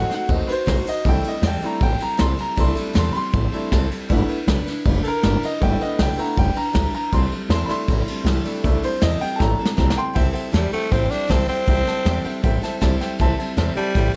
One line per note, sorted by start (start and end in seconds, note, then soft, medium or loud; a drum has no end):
0.00 0.10 F#3 medium
0.00 0.10 A3 medium
0.00 0.29 A3 medium
0.00 0.29 C4 medium
0.00 0.11 D#4 medium
0.00 0.30 D#4 medium
0.00 0.10 F#4 medium
0.00 0.12 F#5 medium
0.09 0.29 F#4 medium
0.09 0.29 C5 medium
0.09 muted upright bass stroke medium
0.09 snare soft
0.09 ride medium
0.13 0.29 D#4 soft
0.13 0.31 F#5 loud
0.28 0.46 D#2 loud
0.28 0.48 A3 medium
0.28 0.47 A3 medium
0.28 0.47 C4 soft
0.28 0.49 D#4 medium
0.28 0.48 D#4 medium
0.28 0.49 F#4 medium
0.28 0.46 C5 medium
0.28 kick loud
0.28 ride medium
0.47 0.66 D#4 soft
0.47 0.66 F#4 medium
0.47 0.50 B4 medium
0.47 0.67 C5 medium
0.47 muted upright bass stroke medium
0.47 ride medium
0.52 0.87 C5 loud
0.66 0.84 B1 loud
0.66 0.86 F#3 loud
0.66 0.86 A3 medium
0.66 0.86 D#4 loud
0.66 0.86 F#4 loud
0.66 0.84 C5 medium
0.66 kick medium
0.66 snare loud
0.66 ride loud
0.85 1.06 D#4 soft
0.85 1.06 F#4 soft
0.85 1.05 C5 soft
0.85 1.06 D#5 loud
0.85 muted upright bass stroke medium
0.85 ride medium
1.05 1.22 C2 loud
1.05 1.24 C3 medium
1.05 1.25 E3 medium
1.05 1.24 G3 medium
1.05 1.31 A3 medium
1.05 1.24 C4 medium
1.05 1.31 D4 medium
1.05 1.23 E4 medium
1.05 1.31 E4 medium
1.05 1.22 A4 medium
1.05 kick loud
1.05 ride medium
1.09 1.26 G5 loud
1.23 1.42 G3 soft
1.23 1.43 C4 soft
1.23 1.43 E4 soft
1.23 1.43 A4 soft
1.23 muted upright bass stroke medium
1.23 ride medium
1.28 1.45 D#5 medium
1.42 1.59 E2 loud
1.42 1.63 C3 medium
1.42 1.63 E3 medium
1.42 1.63 G3 medium
1.42 1.62 C4 medium
1.42 1.61 E4 medium
1.42 1.59 A4 medium
1.42 snare loud
1.42 ride loud
1.47 1.64 G5 medium
1.61 1.79 G3 medium
1.61 1.80 A3 medium
1.61 1.80 C4 medium
1.61 1.80 D4 medium
1.61 1.81 E4 medium
1.61 1.81 A4 medium
1.61 muted upright bass stroke medium
1.61 ride medium
1.66 1.83 A#5 loud
1.80 1.98 A1 loud
1.80 2.00 G3 medium
1.80 2.00 C4 medium
1.80 1.98 E4 medium
1.80 1.98 A4 medium
1.80 2.01 G5 loud
1.80 kick loud
1.80 ride medium
1.99 2.17 G3 soft
1.99 2.18 C4 medium
1.99 2.17 E4 medium
1.99 2.18 A4 medium
1.99 2.20 A#5 loud
1.99 muted upright bass stroke medium
1.99 ride medium
2.17 2.36 C2 loud
2.17 2.38 C3 medium
2.17 2.38 E3 loud
2.17 2.38 G3 medium
2.17 2.38 C4 medium
2.17 2.37 E4 medium
2.17 2.36 A4 medium
2.17 2.39 C6 loud
2.17 snare loud
2.17 ride medium
2.37 2.56 G3 soft
2.37 2.56 C4 soft
2.37 2.56 E4 medium
2.37 2.57 A4 medium
2.37 2.58 A#5 loud
2.37 ride medium
2.56 2.74 C2 loud
2.56 2.76 C3 medium
2.56 2.76 E3 medium
2.56 2.77 G3 medium
2.56 3.12 A3 medium
2.56 2.76 C4 medium
2.56 3.12 D4 medium
2.56 2.75 E4 medium
2.56 3.13 E4 medium
2.56 2.74 A4 medium
2.56 kick loud
2.56 ride medium
2.60 2.77 C6 medium
2.75 2.93 G3 medium
2.75 2.94 C4 soft
2.75 2.94 E4 soft
2.75 2.94 A4 medium
2.75 muted upright bass stroke medium
2.75 ride medium
2.93 3.12 E2 medium
2.93 3.14 C3 medium
2.93 3.14 E3 medium
2.93 3.14 G3 medium
2.93 3.14 C4 loud
2.93 3.12 E4 medium
2.93 3.12 A4 loud
2.93 snare loud
2.93 ride medium
2.98 3.15 C6 medium
3.13 3.30 G3 soft
3.13 3.31 C4 medium
3.13 3.32 E4 medium
3.13 3.33 A4 medium
3.13 3.15 B5 medium
3.13 muted upright bass stroke medium
3.13 ride medium
3.17 3.90 C6 loud
3.32 3.50 A1 medium
3.32 3.52 G3 medium
3.32 3.52 C4 medium
3.32 3.52 E4 medium
3.32 3.51 A4 medium
3.32 kick loud
3.32 ride medium
3.52 3.71 G3 soft
3.52 3.70 A3 soft
3.52 3.72 C4 soft
3.52 3.70 D4 soft
3.52 3.72 E4 medium
3.52 3.70 E4 medium
3.52 3.72 A4 medium
3.52 ride medium
3.72 3.88 C2 loud
3.72 3.91 C3 medium
3.72 3.91 E3 loud
3.72 3.91 G3 loud
3.72 3.90 C4 loud
3.72 3.89 E4 loud
3.72 3.88 A4 loud
3.72 kick medium
3.72 snare loud
3.72 ride medium
3.89 4.07 G3 medium
3.89 4.09 C4 soft
3.89 4.09 E4 medium
3.89 4.09 A4 medium
3.89 muted upright bass stroke medium
3.89 ride medium
4.09 4.26 G1 loud
4.09 4.28 G3 medium
4.09 4.36 A3 medium
4.09 4.36 B3 medium
4.09 4.29 D4 medium
4.09 4.29 E4 medium
4.09 4.36 E4 medium
4.09 4.28 B4 loud
4.09 kick loud
4.09 ride medium
4.27 4.48 E4 medium
4.27 4.48 B4 medium
4.27 muted upright bass stroke medium
4.27 ride medium
4.32 4.47 D4 soft
4.47 4.64 B1 medium
4.47 4.67 G3 medium
4.47 4.67 D4 medium
4.47 4.67 E4 loud
4.47 4.65 B4 loud
4.47 snare loud
4.47 ride medium
4.66 4.85 D4 medium
4.66 4.86 E4 medium
4.66 4.85 B4 medium
4.66 muted upright bass stroke medium
4.66 snare soft
4.66 ride medium
4.85 5.02 F1 loud
4.85 5.04 G3 medium
4.85 5.05 D4 medium
4.85 5.05 E4 medium
4.85 5.03 B4 medium
4.85 kick loud
4.85 ride medium
5.03 5.24 E4 medium
5.03 5.05 A4 medium
5.03 5.24 B4 medium
5.03 muted upright bass stroke medium
5.03 ride medium
5.07 5.23 D4 soft
5.07 5.43 A#4 loud
5.23 5.40 G1 loud
5.23 5.43 G3 medium
5.23 5.43 D4 medium
5.23 5.43 E4 medium
5.23 5.41 B4 medium
5.23 snare loud
5.23 ride medium
5.42 5.62 D4 soft
5.42 5.62 E4 soft
5.42 5.62 B4 medium
5.42 5.62 D#5 medium
5.42 muted upright bass stroke medium
5.42 ride medium
5.60 5.78 G1 medium
5.60 5.81 G3 medium
5.60 6.15 A3 medium
5.60 6.16 B3 medium
5.60 5.81 D4 medium
5.60 6.16 E4 medium
5.60 5.81 E4 medium
5.60 5.81 G5 loud
5.60 kick loud
5.60 ride medium
5.64 5.79 B4 medium
5.80 5.98 D4 soft
5.80 6.00 E4 medium
5.80 6.00 B4 medium
5.80 6.00 D#5 loud
5.80 muted upright bass stroke medium
5.80 ride medium
5.99 6.16 B1 medium
5.99 6.18 G3 medium
5.99 6.18 D4 medium
5.99 6.18 E4 medium
5.99 6.17 B4 medium
5.99 6.19 G5 medium
5.99 snare loud
5.99 ride medium
6.17 6.35 A3 medium
6.17 6.35 B3 soft
6.17 6.36 D4 medium
6.17 6.35 E4 medium
6.17 6.37 E4 medium
6.17 6.37 B4 medium
6.17 6.37 A#5 loud
6.17 muted upright bass stroke medium
6.17 ride medium
6.36 6.54 F1 loud
6.36 6.56 G3 medium
6.36 6.56 D4 medium
6.36 6.55 E4 medium
6.36 6.54 B4 medium
6.36 6.57 G5 loud
6.36 kick loud
6.36 ride medium
6.55 6.73 D4 soft
6.55 6.74 E4 soft
6.55 6.75 B4 medium
6.55 6.74 A#5 loud
6.55 muted upright bass stroke medium
6.55 ride medium
6.73 6.92 D2 loud
6.73 6.93 G3 loud
6.73 6.94 D4 medium
6.73 6.94 E4 medium
6.73 6.92 B4 medium
6.73 6.93 A#5 medium
6.73 kick medium
6.73 snare loud
6.73 ride medium
6.93 7.14 D4 soft
6.93 7.13 E4 medium
6.93 7.13 B4 medium
6.93 7.13 A#5 loud
6.93 muted upright bass stroke medium
6.93 ride medium
7.12 7.29 C2 loud
7.12 7.32 C3 medium
7.12 7.32 E3 medium
7.12 7.33 G3 medium
7.12 7.33 C4 medium
7.12 7.32 E4 medium
7.12 7.31 A4 medium
7.12 7.32 C6 loud
7.12 kick loud
7.12 ride medium
7.31 7.52 E4 soft
7.31 7.51 A4 medium
7.31 muted upright bass stroke medium
7.31 ride medium
7.35 7.52 G3 soft
7.35 7.52 C4 soft
7.49 7.66 E2 loud
7.49 7.70 C3 medium
7.49 7.71 E3 medium
7.49 7.71 G3 medium
7.49 7.69 E4 medium
7.49 7.69 C6 medium
7.49 snare loud
7.49 ride medium
7.53 7.69 C4 medium
7.53 7.68 A4 medium
7.66 8.43 A3 medium
7.66 8.43 D4 medium
7.66 8.44 E4 medium
7.66 7.88 A4 medium
7.66 7.68 B5 medium
7.66 muted upright bass stroke medium
7.66 snare soft
7.66 ride medium
7.70 7.88 G3 medium
7.70 7.89 C4 medium
7.70 7.89 E4 medium
7.70 8.44 C6 loud
7.88 8.05 A1 medium
7.88 8.08 G3 medium
7.88 8.08 C4 medium
7.88 8.08 E4 medium
7.88 8.07 A4 medium
7.88 kick loud
7.88 ride medium
8.07 8.26 G3 soft
8.07 8.26 C4 soft
8.07 8.27 E4 soft
8.07 8.27 A4 medium
8.07 ride medium
8.24 8.42 C2 loud
8.24 8.45 C3 loud
8.24 8.46 E3 loud
8.24 8.46 G3 loud
8.24 8.46 C4 loud
8.24 8.45 E4 loud
8.24 snare loud
8.24 ride medium
8.29 8.44 A4 loud
8.44 8.62 A3 medium
8.44 8.65 C4 medium
8.44 8.62 D4 medium
8.44 8.63 E4 medium
8.44 8.64 E4 medium
8.44 8.65 A4 medium
8.44 ride medium
8.48 8.64 G3 medium
8.63 8.81 C2 loud
8.63 8.83 C3 medium
8.63 8.84 E3 medium
8.63 8.84 G3 loud
8.63 8.89 A3 medium
8.63 8.84 C4 medium
8.63 8.89 D4 medium
8.63 8.90 E4 medium
8.63 8.83 E4 loud
8.63 8.82 A4 loud
8.63 kick loud
8.63 ride medium
8.82 9.01 C4 soft
8.82 9.01 E4 soft
8.82 9.02 A4 medium
8.82 9.02 C5 loud
8.82 muted upright bass stroke medium
8.82 ride medium
8.86 9.00 G3 soft
9.01 9.19 E2 medium
9.01 9.21 C3 medium
9.01 9.21 E3 medium
9.01 9.21 G3 medium
9.01 9.20 C4 loud
9.01 9.19 E4 loud
9.01 9.18 A4 medium
9.01 9.21 D#5 loud
9.01 snare loud
9.01 ride loud
9.20 9.38 G3 medium
9.20 9.39 C4 medium
9.20 9.40 E4 medium
9.20 9.40 A4 medium
9.20 9.40 G5 loud
9.20 muted upright bass stroke medium
9.20 ride medium
9.36 9.59 G3 medium
9.36 9.56 A3 medium
9.36 9.57 D4 soft
9.36 9.57 E4 medium
9.36 9.39 A5 medium
9.40 9.57 A1 loud
9.40 9.59 C4 medium
9.40 9.59 E4 medium
9.40 9.58 A4 medium
9.40 9.77 A#5 loud
9.40 kick loud
9.40 snare medium
9.59 9.77 G3 medium
9.59 9.77 C4 medium
9.59 9.77 E4 medium
9.59 9.78 A4 medium
9.65 snare medium
9.77 9.95 C2 loud
9.77 9.97 C3 loud
9.77 9.96 E3 medium
9.77 9.97 G3 medium
9.77 9.97 C4 medium
9.77 9.95 E4 medium
9.77 9.95 A4 loud
9.77 9.97 A#5 medium
9.77 kick medium
9.77 snare medium
9.90 snare loud
9.96 10.14 G3 medium
9.96 10.14 C4 soft
9.96 10.15 E4 medium
9.96 10.15 A4 medium
9.96 10.14 G5 loud
9.96 10.16 C6 loud
9.96 muted upright bass stroke medium
10.13 10.32 C2 medium
10.13 10.34 C3 medium
10.13 10.34 E3 medium
10.13 10.35 G3 medium
10.13 10.33 C4 medium
10.13 10.32 E4 medium
10.13 10.32 A4 medium
10.13 10.27 C5 loud
10.13 10.27 E5 loud
10.13 10.27 G5 loud
10.13 kick loud
10.13 crash loud
10.33 10.52 G3 soft
10.33 10.52 C4 medium
10.33 10.53 E4 medium
10.33 10.53 A4 medium
10.33 10.46 C5 medium
10.33 10.46 E5 medium
10.33 10.46 G5 medium
10.33 muted upright bass stroke medium
10.33 ride medium
10.51 10.70 E2 medium
10.51 10.72 C3 medium
10.51 10.72 E3 medium
10.51 10.72 G3 loud
10.51 10.72 G3 medium
10.51 10.72 C4 medium
10.51 10.70 E4 medium
10.51 10.69 A4 medium
10.51 10.65 C5 medium
10.51 10.65 E5 medium
10.51 10.65 A5 medium
10.51 snare loud
10.51 ride medium
10.70 10.88 G3 soft
10.70 10.94 A3 loud
10.70 10.90 C4 soft
10.70 10.91 E4 medium
10.70 10.91 A4 medium
10.70 10.85 C5 medium
10.70 10.85 E5 medium
10.70 10.85 G5 medium
10.70 muted upright bass stroke medium
10.70 ride medium
10.90 11.08 A1 medium
10.90 11.10 G3 medium
10.90 11.10 C4 medium
10.90 11.13 C4 medium
10.90 11.09 E4 medium
10.90 11.08 A4 medium
10.90 11.03 C5 loud
10.90 11.04 E5 medium
10.90 11.03 G5 loud
10.90 kick loud
10.90 snare soft
10.90 ride medium
11.10 11.27 G3 soft
11.10 11.28 C4 soft
11.10 11.32 D4 medium
11.10 11.28 E4 medium
11.10 11.29 A4 medium
11.10 11.22 C5 medium
11.10 11.22 E5 medium
11.10 11.22 G5 medium
11.10 muted upright bass stroke medium
11.10 ride medium
11.28 11.46 C2 loud
11.28 11.48 C3 medium
11.28 11.48 E3 medium
11.28 11.48 G3 loud
11.28 11.48 C4 medium
11.28 11.47 E4 medium
11.28 11.46 A4 loud
11.28 11.41 C5 medium
11.28 11.42 E5 medium
11.28 11.41 A5 medium
11.28 kick medium
11.28 snare loud
11.28 ride medium
11.48 11.66 G3 soft
11.48 12.59 C4 loud
11.48 11.66 C4 soft
11.48 11.66 E4 soft
11.48 11.67 A4 medium
11.48 11.60 C5 medium
11.48 11.60 E5 medium
11.48 11.61 G5 medium
11.48 muted upright bass stroke medium
11.48 ride medium
11.65 11.84 C2 loud
11.65 11.85 C3 medium
11.65 11.86 E3 medium
11.65 11.86 G3 medium
11.65 11.86 C4 medium
11.65 11.86 E4 medium
11.65 11.85 A4 medium
11.65 kick loud
11.65 ride medium
11.69 11.80 C5 loud
11.69 11.80 E5 loud
11.69 11.80 G5 loud
11.86 12.05 G3 soft
11.86 12.05 C4 soft
11.86 12.05 E4 soft
11.86 12.05 A4 medium
11.86 11.99 C5 medium
11.86 11.99 E5 medium
11.86 11.99 A5 medium
11.86 snare soft
11.86 ride medium
12.05 12.22 E2 medium
12.05 12.24 C3 medium
12.05 12.25 E3 medium
12.05 12.25 G3 loud
12.05 12.25 C4 loud
12.05 12.24 E4 medium
12.05 12.23 A4 loud
12.05 12.17 C5 medium
12.05 12.17 E5 medium
12.05 12.17 G5 loud
12.05 snare loud
12.05 ride medium
12.24 12.41 G3 medium
12.24 12.42 C4 medium
12.24 12.43 E4 medium
12.24 12.44 A4 medium
12.24 12.36 C5 loud
12.24 12.36 E5 medium
12.24 12.36 G5 loud
12.24 muted upright bass stroke medium
12.24 ride medium
12.42 12.60 A1 medium
12.42 12.62 G3 medium
12.42 12.62 C4 medium
12.42 12.61 E4 medium
12.42 12.60 A4 medium
12.42 12.55 C5 loud
12.42 12.55 E5 loud
12.42 12.55 G5 loud
12.42 kick loud
12.42 snare soft
12.42 ride medium
12.62 12.80 G3 medium
12.62 12.81 C4 medium
12.62 12.81 E4 medium
12.62 12.81 A4 medium
12.62 12.75 C5 medium
12.62 12.74 E5 medium
12.62 12.74 A5 loud
12.62 muted upright bass stroke medium
12.62 snare soft
12.62 ride medium
12.81 12.98 C2 medium
12.81 13.00 C3 loud
12.81 13.00 E3 medium
12.81 13.00 G3 loud
12.81 13.01 C4 loud
12.81 13.00 E4 loud
12.81 12.99 A4 loud
12.81 12.93 C5 medium
12.81 12.93 E5 medium
12.81 12.93 A5 loud
12.81 kick medium
12.81 snare loud
12.81 ride medium
13.00 13.19 G3 medium
13.00 13.19 C4 medium
13.00 13.20 E4 medium
13.00 13.19 A4 medium
13.00 13.12 C5 loud
13.00 13.12 E5 medium
13.00 13.12 G5 loud
13.00 muted upright bass stroke medium
13.00 snare soft
13.00 ride medium
13.19 13.36 C2 loud
13.19 13.38 C3 loud
13.19 13.38 E3 medium
13.19 13.39 G3 medium
13.19 13.39 C4 medium
13.19 13.38 E4 medium
13.19 13.38 A4 loud
13.19 13.32 C5 loud
13.19 13.32 E5 loud
13.19 13.32 A5 loud
13.19 kick loud
13.19 ride medium
13.37 13.56 G3 soft
13.37 13.57 C4 medium
13.37 13.57 E4 medium
13.37 13.57 A4 medium
13.37 13.50 C5 medium
13.37 13.50 E5 medium
13.37 13.50 A5 loud
13.37 muted upright bass stroke medium
13.37 ride medium
13.57 13.74 E2 medium
13.57 13.76 C3 loud
13.57 13.76 E3 loud
13.57 13.76 G3 loud
13.57 13.76 C4 loud
13.57 13.75 E4 loud
13.57 13.74 A4 loud
13.57 13.69 C5 loud
13.57 13.69 E5 medium
13.57 13.69 A5 loud
13.57 snare loud
13.57 ride medium
13.75 14.13 G3 loud
13.75 13.93 G3 soft
13.75 13.95 C4 soft
13.75 13.95 E4 medium
13.75 13.95 A4 medium
13.75 13.88 C5 medium
13.75 13.88 E5 medium
13.75 13.89 A5 medium
13.75 muted upright bass stroke medium
13.75 ride medium
13.95 14.12 A1 loud
13.95 14.14 G3 medium
13.95 14.15 C4 medium
13.95 14.14 E4 medium
13.95 14.14 A4 medium
13.95 14.07 C5 loud
13.95 14.07 E5 medium
13.95 14.07 G5 loud
13.95 kick loud
13.95 snare soft
13.95 ride medium